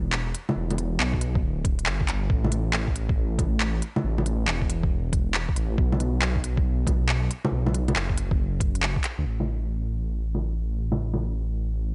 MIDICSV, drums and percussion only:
0, 0, Header, 1, 2, 480
1, 0, Start_track
1, 0, Tempo, 434783
1, 620, Time_signature, 4, 2, 24, 8
1, 13189, End_track
2, 0, Start_track
2, 0, Title_t, "Drums"
2, 138, Note_on_c, 9, 39, 102
2, 249, Note_off_c, 9, 39, 0
2, 382, Note_on_c, 9, 42, 53
2, 492, Note_off_c, 9, 42, 0
2, 540, Note_on_c, 9, 61, 62
2, 650, Note_off_c, 9, 61, 0
2, 778, Note_on_c, 9, 42, 29
2, 778, Note_on_c, 9, 61, 47
2, 864, Note_off_c, 9, 42, 0
2, 864, Note_on_c, 9, 42, 50
2, 889, Note_off_c, 9, 61, 0
2, 974, Note_off_c, 9, 42, 0
2, 1105, Note_on_c, 9, 39, 104
2, 1216, Note_off_c, 9, 39, 0
2, 1254, Note_on_c, 9, 36, 62
2, 1339, Note_on_c, 9, 42, 52
2, 1365, Note_off_c, 9, 36, 0
2, 1449, Note_off_c, 9, 42, 0
2, 1495, Note_on_c, 9, 36, 106
2, 1605, Note_off_c, 9, 36, 0
2, 1818, Note_on_c, 9, 36, 106
2, 1820, Note_on_c, 9, 42, 52
2, 1929, Note_off_c, 9, 36, 0
2, 1930, Note_off_c, 9, 42, 0
2, 1975, Note_on_c, 9, 42, 30
2, 2054, Note_on_c, 9, 39, 102
2, 2085, Note_off_c, 9, 42, 0
2, 2165, Note_off_c, 9, 39, 0
2, 2215, Note_on_c, 9, 36, 63
2, 2301, Note_on_c, 9, 39, 59
2, 2301, Note_on_c, 9, 42, 48
2, 2326, Note_off_c, 9, 36, 0
2, 2411, Note_off_c, 9, 39, 0
2, 2411, Note_off_c, 9, 42, 0
2, 2538, Note_on_c, 9, 36, 115
2, 2649, Note_off_c, 9, 36, 0
2, 2699, Note_on_c, 9, 61, 47
2, 2780, Note_on_c, 9, 42, 50
2, 2809, Note_off_c, 9, 61, 0
2, 2890, Note_off_c, 9, 42, 0
2, 3017, Note_on_c, 9, 39, 102
2, 3128, Note_off_c, 9, 39, 0
2, 3176, Note_on_c, 9, 36, 60
2, 3264, Note_on_c, 9, 42, 49
2, 3286, Note_off_c, 9, 36, 0
2, 3375, Note_off_c, 9, 42, 0
2, 3415, Note_on_c, 9, 36, 105
2, 3526, Note_off_c, 9, 36, 0
2, 3739, Note_on_c, 9, 36, 102
2, 3742, Note_on_c, 9, 42, 52
2, 3742, Note_on_c, 9, 61, 36
2, 3849, Note_off_c, 9, 36, 0
2, 3852, Note_off_c, 9, 42, 0
2, 3852, Note_off_c, 9, 61, 0
2, 3979, Note_on_c, 9, 39, 99
2, 4089, Note_off_c, 9, 39, 0
2, 4219, Note_on_c, 9, 42, 49
2, 4330, Note_off_c, 9, 42, 0
2, 4375, Note_on_c, 9, 61, 63
2, 4485, Note_off_c, 9, 61, 0
2, 4617, Note_on_c, 9, 61, 51
2, 4703, Note_on_c, 9, 42, 51
2, 4728, Note_off_c, 9, 61, 0
2, 4814, Note_off_c, 9, 42, 0
2, 4941, Note_on_c, 9, 39, 99
2, 5051, Note_off_c, 9, 39, 0
2, 5096, Note_on_c, 9, 36, 57
2, 5185, Note_on_c, 9, 42, 49
2, 5207, Note_off_c, 9, 36, 0
2, 5295, Note_off_c, 9, 42, 0
2, 5337, Note_on_c, 9, 36, 97
2, 5448, Note_off_c, 9, 36, 0
2, 5661, Note_on_c, 9, 36, 97
2, 5663, Note_on_c, 9, 42, 52
2, 5771, Note_off_c, 9, 36, 0
2, 5773, Note_off_c, 9, 42, 0
2, 5899, Note_on_c, 9, 39, 98
2, 6010, Note_off_c, 9, 39, 0
2, 6058, Note_on_c, 9, 36, 59
2, 6142, Note_on_c, 9, 42, 49
2, 6169, Note_off_c, 9, 36, 0
2, 6252, Note_off_c, 9, 42, 0
2, 6383, Note_on_c, 9, 36, 106
2, 6493, Note_off_c, 9, 36, 0
2, 6541, Note_on_c, 9, 61, 55
2, 6625, Note_on_c, 9, 42, 52
2, 6651, Note_off_c, 9, 61, 0
2, 6736, Note_off_c, 9, 42, 0
2, 6864, Note_on_c, 9, 39, 102
2, 6974, Note_off_c, 9, 39, 0
2, 7019, Note_on_c, 9, 36, 55
2, 7109, Note_on_c, 9, 42, 54
2, 7129, Note_off_c, 9, 36, 0
2, 7219, Note_off_c, 9, 42, 0
2, 7258, Note_on_c, 9, 36, 97
2, 7368, Note_off_c, 9, 36, 0
2, 7581, Note_on_c, 9, 36, 95
2, 7587, Note_on_c, 9, 42, 54
2, 7587, Note_on_c, 9, 61, 36
2, 7692, Note_off_c, 9, 36, 0
2, 7698, Note_off_c, 9, 42, 0
2, 7698, Note_off_c, 9, 61, 0
2, 7825, Note_on_c, 9, 39, 97
2, 7935, Note_off_c, 9, 39, 0
2, 8067, Note_on_c, 9, 42, 53
2, 8177, Note_off_c, 9, 42, 0
2, 8220, Note_on_c, 9, 61, 64
2, 8331, Note_off_c, 9, 61, 0
2, 8462, Note_on_c, 9, 61, 52
2, 8550, Note_on_c, 9, 42, 53
2, 8573, Note_off_c, 9, 61, 0
2, 8660, Note_off_c, 9, 42, 0
2, 8703, Note_on_c, 9, 42, 30
2, 8703, Note_on_c, 9, 61, 62
2, 8787, Note_on_c, 9, 39, 103
2, 8813, Note_off_c, 9, 42, 0
2, 8813, Note_off_c, 9, 61, 0
2, 8898, Note_off_c, 9, 39, 0
2, 8937, Note_on_c, 9, 36, 58
2, 9026, Note_on_c, 9, 42, 55
2, 9047, Note_off_c, 9, 36, 0
2, 9136, Note_off_c, 9, 42, 0
2, 9177, Note_on_c, 9, 36, 98
2, 9288, Note_off_c, 9, 36, 0
2, 9499, Note_on_c, 9, 36, 99
2, 9503, Note_on_c, 9, 42, 56
2, 9609, Note_off_c, 9, 36, 0
2, 9613, Note_off_c, 9, 42, 0
2, 9662, Note_on_c, 9, 42, 31
2, 9744, Note_on_c, 9, 39, 98
2, 9772, Note_off_c, 9, 42, 0
2, 9854, Note_off_c, 9, 39, 0
2, 9896, Note_on_c, 9, 36, 63
2, 9980, Note_on_c, 9, 39, 57
2, 9980, Note_on_c, 9, 42, 52
2, 10006, Note_off_c, 9, 36, 0
2, 10091, Note_off_c, 9, 39, 0
2, 10091, Note_off_c, 9, 42, 0
2, 10378, Note_on_c, 9, 61, 48
2, 10489, Note_off_c, 9, 61, 0
2, 11423, Note_on_c, 9, 61, 35
2, 11534, Note_off_c, 9, 61, 0
2, 12054, Note_on_c, 9, 61, 58
2, 12164, Note_off_c, 9, 61, 0
2, 12294, Note_on_c, 9, 61, 46
2, 12404, Note_off_c, 9, 61, 0
2, 13189, End_track
0, 0, End_of_file